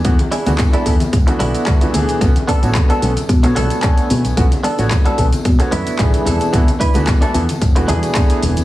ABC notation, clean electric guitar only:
X:1
M:4/4
L:1/16
Q:"Swing 16ths" 1/4=111
K:Bdor
V:1 name="Clean electric guitar"
z2 [DEG]2 z [DEA] z4 [DEF]4 z2 | z2 [B,DA]2 z [B,DA] z4 [B,DA]4 z2 | z2 [B,DA]2 z [B,DA] z4 [B,DE]4 [DEA]2- | [DEA] z [DEB]2 z [DEA] z4 [DEG]4 z2 |]